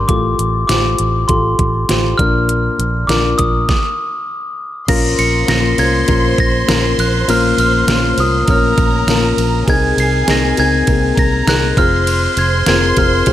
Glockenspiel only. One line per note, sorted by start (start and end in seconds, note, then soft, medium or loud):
0.08 0.66 D6 medium
0.67 1.30 D6 medium
1.28 2.14 C6 medium
2.18 3.11 F6 loud
3.07 3.36 D6 medium
3.38 4.54 D#6 medium
4.89 5.20 A#6 loud
5.19 5.49 C#7 loud
5.49 5.80 A#6 loud
5.79 6.40 G#6 loud
6.40 6.95 A#6 loud
7.00 7.27 F#6 medium
7.30 7.43 F6 medium
7.60 8.15 F6 loud
8.20 8.33 D#6 medium
8.51 9.35 F6 medium
9.70 9.99 G#6 loud
10.00 10.27 C7 loud
10.31 10.60 A#6 loud
10.60 11.20 G#6 loud
11.19 11.32 A#6 loud
11.49 11.79 F#6 loud
11.78 12.33 F6 medium
12.38 12.67 G#6 medium
12.68 12.81 G#6 medium
12.98 13.33 F6 medium